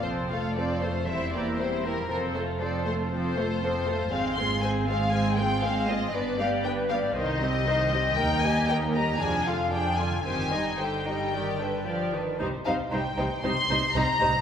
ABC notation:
X:1
M:4/4
L:1/8
Q:1/4=117
K:Fmix
V:1 name="Violin section"
c f d c =e d c B | B c d c c4 | [K:Cm] f c' a f a g f e | d f g f e4 |
g a g b a f g a | a2 g4- g z | z f g2 c'2 b2 |]
V:2 name="Violin section"
[Ac] [FA] [Ac] [FA] [=Ec] [GB] [Ec] [GB] | [Ac] [FA] [Ac] [FA] [Ac] [FA] [Ac] [FA] | [K:Cm] [Ac] [FA] [Ac] [FA] [Ac] [FA] [Ac] [FA] | =B [Gd] B [Gd] [Ec] [Ge] [Ec] [Ge] |
B [Ge] B [Ge] [DA] F [DA] F | [Gc] [Ee] [Gc] [Ee] [Gd] [D=B] [Gd] [DB] | [Ec] [Ec] [Ec] [Ec] [Ec] [Ec] [Ec] [Ec] |]
V:3 name="Viola section"
[F,C] A, [F,C] A, [G,C] [B,=E] [G,C] [B,E] | [F,C] A, [F,C] A, [F,C] A, [F,C] A, | [K:Cm] [A,C] [A,C] [A,C] [A,C] [A,C] [A,C] [A,C] [A,C] | [=B,D] [G,B,] [B,D] [G,B,] [E,E] [G,C] [E,E] [G,C] |
[B,E] [G,B,] [B,E] [G,B,] [F,D] [D,F] [F,D] [D,F] | [E,C] [G,E] D, G, E, D, F, E, | [G,E] [G,E] [G,E] [G,E] [G,E] [G,E] [G,E] [G,E] |]
V:4 name="Cello section" clef=bass
F,,4 =E,,4 | F,,8 | [K:Cm] A,,8 | G,,4 C,,4 |
E,,4 F,,4 | G,,6- G,, z | C, C, C, C, C, C, C, C, |]
V:5 name="Double bass section" clef=bass
F,,,4 =E,,,4 | F,,,8 | [K:Cm] A,,,8 | G,,,4 C,,4 |
E,,4 F,,,4 | G,,,6- G,,, z | C,, C,, C,, C,, C,, C,, C,, C,, |]